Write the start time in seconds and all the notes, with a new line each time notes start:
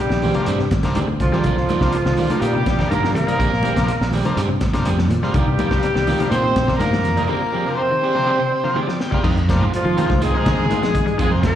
Already playing: G2 G3 G4
0.00 high conga
0.09 A#1 D#3, snare
0.22 C4 G4 G#4 D5, open hi-hat, high conga, low conga
0.34 C3 D3 F3 A#3 D4, muted clean electric guitar stroke, closed hi-hat, high conga
0.46 G2 C4 G#4 D5, muted clean electric guitar stroke, closed hi-hat, high conga
0.59 C3, muted clean electric guitar stroke, snare
0.71 G#1, muted clean electric guitar stroke, kick, snare, closed hi-hat, high conga
0.83 C3 D3 F3 A#3 D4, kick, snare, closed hi-hat
0.95 D2 D#3 C4 G4 G#4 D5, closed hi-hat, high conga
1.07 D3, muted clean electric guitar stroke
1.19 C2 F2 F3 F4, muted clean electric guitar stroke, kick, closed hi-hat
1.32 C3 F3 G3 A#3 D4 G4 G#4 D5, snare, low conga
1.44 C2 D3 F4 A#4 D5, muted clean electric guitar stroke, kick, closed hi-hat, high conga
1.57 C2, muted clean electric guitar stroke, snare
1.69 F3 D#4 F4 A#4 D5, snare, closed hi-hat, high conga
1.81 C2 C3 F3 A#3 D4, muted clean electric guitar stroke, kick, snare
1.92 muted clean electric guitar stroke, closed hi-hat, high conga
2.05 C2 D#3, snare
2.17 D#4 F4 A#4 D5, open hi-hat, high conga, low conga
2.30 C3 D3 F3 A#3 D4, muted clean electric guitar stroke, closed hi-hat, high conga
2.40 G2 A#2 G3 D#4 F4 G4 A#4, muted clean electric guitar stroke, closed hi-hat, high conga
2.54 C3, muted clean electric guitar stroke
2.66 A#1, muted clean electric guitar stroke, kick, snare, closed hi-hat, high conga
2.78 C3 D3 F3 A#3 D4, kick, snare, low conga
2.89 G2 A#2 D#3 A#3 D#4 F4 A#4 D5, closed hi-hat, high conga
3.03 F3, muted clean electric guitar stroke, snare
3.13 A#2 C3 A#3 A#4, muted clean electric guitar stroke, snare, closed hi-hat, low conga
3.27 C3 F3 G3 A#3 D#4 F4 A#4 D5, closed hi-hat
3.39 A#1 D3 C4 G4 G#4 D5, kick, closed hi-hat, high conga
3.52 A#1, muted clean electric guitar stroke, snare
3.63 F3 C4 G4 G#4 D5, closed hi-hat, high conga
3.76 A#1 C3 F3 A#3 D4, muted clean electric guitar stroke, kick, snare, closed hi-hat
3.88 muted clean electric guitar stroke, closed hi-hat, high conga
4.01 A#1, snare
4.12 C4 G4 G#4 D5, open hi-hat, high conga, low conga
4.25 C3 D3 F3 A#3 D4, muted clean electric guitar stroke, closed hi-hat, high conga
4.37 G2 C4 G4 G#4 D5, closed hi-hat, high conga
4.49 C3, muted clean electric guitar stroke
4.61 G#1, muted clean electric guitar stroke, kick, snare, closed hi-hat, high conga
4.73 C3 D3 F3 A#3 D4, kick, snare, closed hi-hat
4.85 F2 C4 G4 G#4 D5, muted clean electric guitar stroke, closed hi-hat, high conga
4.98 F3, muted clean electric guitar stroke, snare, high conga
5.10 A#2, muted clean electric guitar stroke, closed hi-hat, low conga
5.22 C3 F3 G3 A#3 F4 G4 G#4 D5, snare
5.33 C2 G2 D3 G3 D#4 F4 G4 A#4 D5, kick, closed hi-hat, high conga
5.47 C2, muted clean electric guitar stroke
5.59 F3 D#4 F4 A#4 D5, closed hi-hat, high conga
5.71 C2 C3 F3 A#3 D4, muted clean electric guitar stroke, kick, snare
5.83 muted clean electric guitar stroke, closed hi-hat, high conga
5.95 C2 D#3, snare
6.07 D#4 F4 A#4 D5, open hi-hat, high conga, low conga
6.19 C3 D3 F3 A#3 D4, muted clean electric guitar stroke, closed hi-hat, high conga
6.30 A#2 C3 C4 D#4 F4 A#4 C5 D5, snare, closed hi-hat, high conga
6.44 muted clean electric guitar stroke
6.56 A#1, muted clean electric guitar stroke, kick, snare, closed hi-hat, high conga
6.67 C3 D3 F3 A#3 D4, kick, snare, low conga
6.77 G2 A#2 D#3 A#3 D#4 F4 A#4 D5, snare, closed hi-hat, high conga
6.92 F3, muted clean electric guitar stroke, snare, high conga
7.04 F2, muted clean electric guitar stroke, snare, closed hi-hat, low conga
7.16 C3 F3 G3 A#3 D#4 F4 A#4 D5, closed hi-hat
7.26 A#2 D3 A#3 C4 G4 G#4 A#4 D5
7.42 muted clean electric guitar stroke
7.53 F3 C4 G4 G#4 D5
7.65 C3 F3 A#3 D4, muted clean electric guitar stroke
7.75 C3 C4 C5, muted clean electric guitar stroke
7.91 D#3
8.03 C4 G4 G#4 D5
8.15 C3 D3 F3 A#3 D4, muted clean electric guitar stroke
8.27 C4 G4 G#4 D5
8.39 C3, muted clean electric guitar stroke
8.52 muted clean electric guitar stroke
8.64 C3 D3 F3 A#3 F4
8.75 D#3 C4 G4 G#4 D5, high tom
8.87 F3, muted clean electric guitar stroke, snare
9.00 G5, muted clean electric guitar stroke, snare
9.11 C3 F3 G3 A#3 F4 G4 G#4 D5, kick
9.23 F2 C3 D#3 F3 G#3 A#3 C4 D#4 F4, kick, crash, high conga
9.37 muted clean electric guitar stroke, closed hi-hat
9.48 C3 F3 A#3 D4, muted clean electric guitar stroke, kick, snare, closed hi-hat, high conga
9.61 G#2 G#3 C4 F4
9.73 F2 F3 F4, muted clean electric guitar stroke, muted fingered electric bass stroke, closed hi-hat, high conga
9.85 D#3 F3, muted clean electric guitar stroke
9.96 C3 D#3 F3 G#3 A#3 C4 F4, closed hi-hat, high conga, low conga
10.09 C2 D3, kick, snare, high conga
10.21 G#2 D#3 G#3 C4 F4 G#4, closed hi-hat, high conga
10.34 C3 F3 A#3 D#4, muted clean electric guitar stroke
10.46 D3, muted clean electric guitar stroke, kick, snare, closed hi-hat, high conga
10.58 D3, snare, low conga
10.70 G#2 D#3 G#3 C4 F4, closed hi-hat, high conga
10.82 F3, muted clean electric guitar stroke, snare, closed hi-hat
10.95 D#2, muted clean electric guitar stroke, kick, closed hi-hat, low conga
11.06 G3, closed hi-hat
11.18 F2 G#2 D#3 G#3 C4 F4 G#4, kick, closed hi-hat, high conga
11.31 C3 F3 A#3 C4, muted clean electric guitar stroke
11.43 A#2 F3 A#3 A#4, muted clean electric guitar stroke, kick, snare, closed hi-hat, high conga